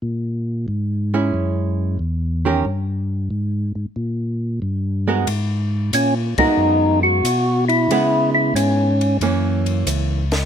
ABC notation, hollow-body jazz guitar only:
X:1
M:4/4
L:1/8
Q:"Swing" 1/4=92
K:G#m
V:1 name="Hollow-body jazz guitar"
z3 [G,CE]3 z [D,C=GA] | z6 z [G,B,F_B] | z3 [G,B,FA]3 z2 | [G,B,E]3 z [E,A,C]3 z |]